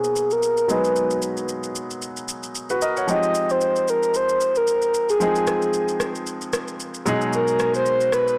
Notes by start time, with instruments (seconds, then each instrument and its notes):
Already playing: grand piano B2 F#3 A#3 D#4 G#4 F5, soft synth lead G#4
0.04 shaker
0.16 shaker
0.31 soft synth lead A#4, shaker
0.43 shaker
0.57 shaker
0.68 grand piano F#3 G#3 B3 D#4 G#4, soft synth lead B4, shaker
0.84 shaker
0.96 shaker
1.11 shaker
1.22 shaker
1.37 shaker
1.49 shaker
1.63 shaker
1.76 shaker
1.91 shaker
2.02 shaker
2.17 shaker
2.28 shaker
2.43 shaker
2.55 shaker
2.70 grand piano F#4 B4, shaker
2.82 grand piano A#4 D#5, shaker
2.97 grand piano C#5 F#5, shaker
3.07 grand piano F3 G#3 C4 D#4 G4, soft synth lead D#5, shaker
3.23 shaker
3.35 shaker
3.50 soft synth lead C5, shaker
3.61 shaker
3.76 shaker
3.88 soft synth lead A#4, shaker
4.03 shaker
4.14 soft synth lead C5, shaker
4.29 shaker
4.41 shaker
4.55 soft synth lead A#4, shaker
4.67 shaker
4.82 shaker
4.94 shaker
5.09 soft synth lead G#4, shaker
5.20 grand piano F3 G#3 C4 D#4 G#4, shaker
5.35 shaker
5.47 cross-stick, shaker
5.62 shaker
5.73 shaker
5.88 shaker
6.00 cross-stick, shaker
6.15 shaker
6.27 shaker
6.41 shaker
6.53 cross-stick, shaker
6.68 shaker
6.80 shaker
6.94 shaker
7.06 grand piano B2 F#3 G#3 D#4 G#4, shaker
7.21 shaker
7.33 soft synth lead A#4, shaker
7.48 shaker
7.59 cross-stick, shaker
7.74 soft synth lead C5, shaker
7.86 shaker
8.01 shaker
8.12 soft synth lead B4, cross-stick, shaker
8.28 shaker